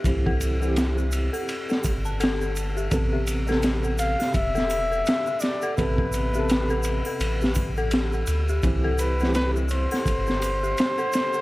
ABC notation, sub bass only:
X:1
M:4/4
L:1/8
Q:"Swing 16ths" 1/4=84
K:Am
V:1 name="Sub bass" clef=bass
C,,3 z2 G,,,3 | A,,,3 z E,,,2 z2 | A,,,3 z A,,,3 D,, | C,,3 z G,,,2 z2 |]